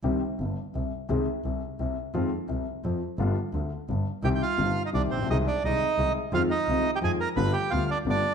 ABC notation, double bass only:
X:1
M:3/4
L:1/8
Q:1/4=172
K:Cm
V:1 name="Double bass" clef=bass
C,, z G,,, z C,, z | C,, z C,, z C,, z | F,, z C,, z F,, z | G,,, z D,, z G,,, z |
C,, z G,,, z C,, B,,, | C,, z C,, z C,, z | F,, z C,, z F,, z | G,,, z D,, z G,,, z |]